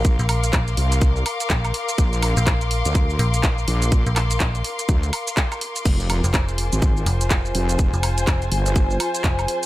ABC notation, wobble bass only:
X:1
M:4/4
L:1/16
Q:"Swing 16ths" 1/4=124
K:Bbmix
V:1 name="Wobble bass" clef=bass
B,,, z4 z C,,4 z6 | B,,,3 z4 D,,3 z4 B,,,2- | B,,, z6 z D,,2 z6 | F,,,3 z4 A,,,3 z4 F,,,2- |
F,,, z4 z G,,,4 z6 |]